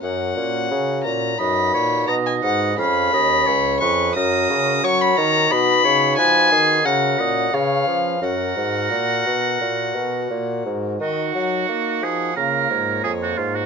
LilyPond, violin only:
\new Staff \with { instrumentName = "Violin" } { \time 4/4 \key fis \major \tempo 4 = 88 fis''4. ais''8 b''4 ais''16 gis''16 fis''8 | b''4. cis'''8 dis'''4 cis'''16 b''16 ais''8 | b''4 gis''4 fis''4 eis''4 | fis''2.~ fis''8 r8 |
\key ees \minor ees''8 ges''4. f''8 des''4. | }